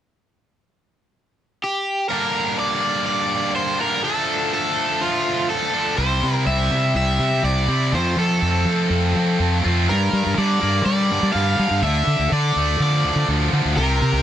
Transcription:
1.64 G4
2.09 G2 D3 G3 A#3 A#4
2.13 D4
2.59 D5
3.06 D5
3.56 C5
3.79 G2 D3 G3 A#3 D4 A#4
4.03 D3 F3 A3 D4 A4
4.54 A4
5.01 F4
5.50 A4
5.74 D3 F3 A3 D4
5.97 C2 C3 G3 C4 E4 C5
6.23 C3
6.46 C2 E5
6.70 C3
6.94 C2 E5
7.19 C3
7.43 C2 D5
7.68 C3 G3 C4 E4
7.92 F2 F3 A3 C4 F4 C5
8.16 F3 A4
8.42 F2
8.65 F3
8.90 F2
9.15 F3
9.39 F2
9.64 F2 F3 A3 C4 F4
9.89 G2 A#4
10.13 G3
10.26 G2
10.38 D3 G3 D5
10.60 G2 A#3
10.85 G3 D5
11.11 G2 D3
11.22 G3
11.33 G2 G3 F5
11.59 D3 G3
11.70 G2
11.82 D2 D3 E5
12.07 D3
12.19 D2
12.32 D3 D5
12.56 D2 A3
12.80 D3 F3 D5
13.04 D2 D3
13.15 D3
13.28 D2 F3
13.52 D3
13.65 D2
13.76 C2 C3 A#4
14.01 C3
14.12 C2

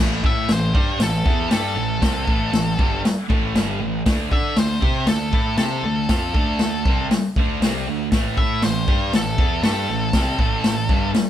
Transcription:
Already playing: A2
0.00 A1 E3 A3
0.24 A2 A3 E4 A4 E5, kick
0.49 A1 A2 E3 C5, snare, open hi-hat
0.74 G2 G3 D4 G4, kick
0.99 A1 A2 E3 A4, snare, open hi-hat
1.24 E2 E3 B3 E4, kick
1.49 G2 G3 D4 G4 A4, snare, open hi-hat
1.75 A1 A2 E3
2.01 C2 C3 G3 C4, kick, snare, open hi-hat
2.25 A1 A2 E3 A3, kick
2.52 A1 A2 E3, snare, open hi-hat
2.78 G1 G2 D3 G3, kick
3.03 muted distorted electric guitar stroke, muted picked electric bass stroke, snare, open hi-hat
3.29 A1 A2 E3 A3, kick
3.55 G1 G2 D3 G3, snare, open hi-hat
3.81 A1 A2 E3
4.06 D2 D3 A3 D4, kick, snare, open hi-hat
4.30 D3 D4 A4 D5 E5, kick
4.56 D2 D3 A3 C5, snare, open hi-hat
4.80 C3 C4 G4 C5, kick
5.06 D2 D3 A3 A4, snare, open hi-hat
5.32 A2 A3 E4 A4, kick
5.57 C3 C4 G4 A4 C5, snare, open hi-hat
5.83 D2 D3 A3
6.09 F2 F3 C4 F4, kick, snare, open hi-hat
6.34 D2 D3 A3 D4, kick
6.59 D2 D3 A3, snare, open hi-hat
6.85 C2 C3 G3 C4, kick
7.11 muted picked electric bass stroke, muted distorted electric guitar stroke, snare, open hi-hat
7.36 D2 D3 A3 D4, kick
7.61 C2 C3 G3 C4, snare, open hi-hat
7.87 D2 D3 A3
8.12 A1 A2 E3 A3, kick, snare, open hi-hat
8.37 A2 A3 E4 A4 E5, kick
8.62 A1 A2 E3 C5, snare, open hi-hat
8.87 G2 G3 D4 G4, kick
9.13 A1 A2 E3 A4, snare, open hi-hat
9.38 E2 E3 B3 E4, kick
9.63 G2 G3 D4 G4 A4, snare, open hi-hat
9.89 A1 A2 E3
10.13 C2 C3 G3 C4, kick, snare, open hi-hat
10.38 A1 A2 E3 A3, kick
10.64 A1 A2 E3, snare, open hi-hat
10.89 G1 G2 D3 G3, kick
11.14 muted picked electric bass stroke, muted distorted electric guitar stroke, snare, open hi-hat

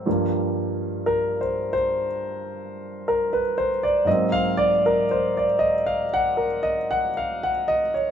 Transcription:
0.06 G2 F3 G3 A#3
1.06 A#4
1.41 C5
1.73 C5
3.08 A#4
3.33 B4
3.58 C5
3.83 D5
4.05 G#2 F#3 A#3 D#5
4.10 C4
4.32 F5
4.57 D5
4.86 A#4
5.11 C5
5.37 D5
5.59 D#5
5.86 F5
6.14 F#5
6.37 A#4
6.63 D#5
6.91 F#5
7.17 F5
7.43 F#5
7.68 D#5
7.94 C#5

